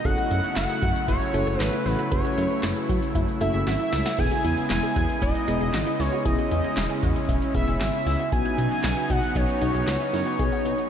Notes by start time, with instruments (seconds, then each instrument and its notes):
0.05 analog synth bass F#1, analog synth pad C#3 F#3 A3 E4, fm electric piano C#4 F#4 A4, synth arpeggio sound G#4, analog synth lead F#5, kick, closed hi-hat
0.18 synth arpeggio sound F#4, closed hi-hat
0.31 analog synth bass F#2, synth arpeggio sound E4, closed hi-hat
0.44 closed hi-hat
0.56 analog synth bass F#1, synth arpeggio sound E4, analog synth lead F#5, snare, clap, closed hi-hat
0.69 synth arpeggio sound G#4, closed hi-hat
0.82 analog synth bass F#2, synth arpeggio sound F#4, kick, closed hi-hat
0.95 closed hi-hat
1.08 analog synth bass F#1, synth arpeggio sound E4, analog synth lead C#5, kick, closed hi-hat
1.21 closed hi-hat
1.34 analog synth bass F#1, fm electric piano C#4 F#4 A4, synth arpeggio sound E4, closed hi-hat
1.47 analog synth bass F#1, synth arpeggio sound G#4, closed hi-hat
1.60 analog synth bass G#1, synth arpeggio sound F#4, analog synth lead B4, snare, clap, closed hi-hat
1.73 synth arpeggio sound E4, closed hi-hat
1.86 analog synth bass A1, synth arpeggio sound E4, analog synth lead B4, open hi-hat
1.99 synth arpeggio sound F#4, closed hi-hat
2.12 analog synth bass F#1, fm electric piano C#4 F#4 B4, synth arpeggio sound G#4, analog synth lead C#5, kick, closed hi-hat
2.25 synth arpeggio sound F#4, closed hi-hat
2.37 analog synth bass F#2, synth arpeggio sound E4, closed hi-hat
2.51 closed hi-hat
2.63 analog synth bass F#1, synth arpeggio sound E4, snare, clap, closed hi-hat
2.76 synth arpeggio sound G#4, closed hi-hat
2.89 analog synth bass F#2, synth arpeggio sound F#4, kick, closed hi-hat
3.02 closed hi-hat
3.15 analog synth bass F#1, synth arpeggio sound E4, kick, closed hi-hat
3.28 closed hi-hat
3.41 analog synth bass F#1, fm electric piano C#4 F#4 A4, synth arpeggio sound E4, analog synth lead E5, closed hi-hat
3.54 analog synth bass F#1, synth arpeggio sound G#4, closed hi-hat
3.67 analog synth bass G#1, synth arpeggio sound F#4, analog synth lead E5, snare, closed hi-hat
3.80 synth arpeggio sound E4, closed hi-hat
3.93 analog synth bass C#2, synth arpeggio sound E4, snare, open hi-hat
4.06 synth arpeggio sound F#4, snare, closed hi-hat
4.18 analog synth bass E1, analog synth pad C#3 G#3 B3, fm electric piano B3 E4 G#4, synth arpeggio sound G#4, analog synth lead G#5, kick, crash
4.31 synth arpeggio sound F#4, closed hi-hat
4.44 analog synth bass E2, synth arpeggio sound E4, closed hi-hat
4.57 closed hi-hat
4.70 analog synth bass E1, synth arpeggio sound E4, analog synth lead G#5, snare, clap, closed hi-hat
4.83 synth arpeggio sound G#4, closed hi-hat
4.96 analog synth bass E2, synth arpeggio sound F#4, kick, closed hi-hat
5.09 closed hi-hat
5.22 analog synth bass E1, synth arpeggio sound E4, analog synth lead D#5, kick, closed hi-hat
5.35 closed hi-hat
5.48 analog synth bass E1, fm electric piano B3 E4 G#4, synth arpeggio sound E4, closed hi-hat
5.61 analog synth bass E1, synth arpeggio sound G#4, closed hi-hat
5.74 analog synth bass G#1, synth arpeggio sound F#4, snare, clap, closed hi-hat
5.86 synth arpeggio sound E4, closed hi-hat
5.99 analog synth bass C#2, synth arpeggio sound E4, analog synth lead C#5, open hi-hat
6.12 synth arpeggio sound F#4, closed hi-hat
6.25 analog synth bass E1, fm electric piano B3 E4 G#4, analog synth pad C#4, synth arpeggio sound G#4, analog synth lead D#5, kick, closed hi-hat
6.38 synth arpeggio sound F#4, closed hi-hat
6.51 analog synth bass E2, synth arpeggio sound E4, closed hi-hat
6.64 closed hi-hat
6.77 analog synth bass E1, synth arpeggio sound E4, snare, clap, closed hi-hat
6.90 synth arpeggio sound G#4, closed hi-hat
7.03 analog synth bass E2, synth arpeggio sound F#4, kick, closed hi-hat
7.16 closed hi-hat
7.29 analog synth bass E1, synth arpeggio sound E4, kick, closed hi-hat
7.42 closed hi-hat
7.54 analog synth bass E1, fm electric piano B3 E4 G#4, synth arpeggio sound E4, analog synth lead E5, kick, closed hi-hat
7.67 analog synth bass E1, synth arpeggio sound G#4, closed hi-hat
7.80 analog synth bass G#1, synth arpeggio sound F#4, analog synth lead E5, snare, clap, closed hi-hat
7.93 synth arpeggio sound E4, closed hi-hat
8.06 analog synth bass C#2, synth arpeggio sound E4, open hi-hat
8.19 synth arpeggio sound F#4, closed hi-hat
8.32 analog synth bass B1, analog synth pad F#3 B3 D#4, fm electric piano B3 D#4 F#4, synth arpeggio sound G#4, analog synth lead G#5, kick, closed hi-hat
8.45 synth arpeggio sound F#4, closed hi-hat
8.58 analog synth bass B2, synth arpeggio sound D#4, closed hi-hat
8.71 closed hi-hat
8.84 analog synth bass B1, synth arpeggio sound D#4, snare, clap, closed hi-hat
8.97 synth arpeggio sound F#4, closed hi-hat
9.10 analog synth bass B2, synth arpeggio sound E4, analog synth lead F#5, kick, closed hi-hat
9.23 closed hi-hat
9.36 analog synth bass B1, synth arpeggio sound D#4, analog synth lead C#5, kick, closed hi-hat
9.49 closed hi-hat
9.62 analog synth bass B1, fm electric piano B3 D#4 F#4, synth arpeggio sound D#4, closed hi-hat
9.74 analog synth bass B1, synth arpeggio sound G#4, closed hi-hat
9.87 analog synth bass C#2, synth arpeggio sound F#4, snare, clap, closed hi-hat
10.00 synth arpeggio sound E4, closed hi-hat
10.13 analog synth bass F#2, synth arpeggio sound E4, open hi-hat
10.26 synth arpeggio sound F#4, closed hi-hat
10.39 analog synth bass B1, fm electric piano B3 D#4 G#4, synth arpeggio sound G#4, kick, closed hi-hat
10.52 synth arpeggio sound F#4, closed hi-hat
10.65 analog synth bass B2, synth arpeggio sound D#4, closed hi-hat
10.78 closed hi-hat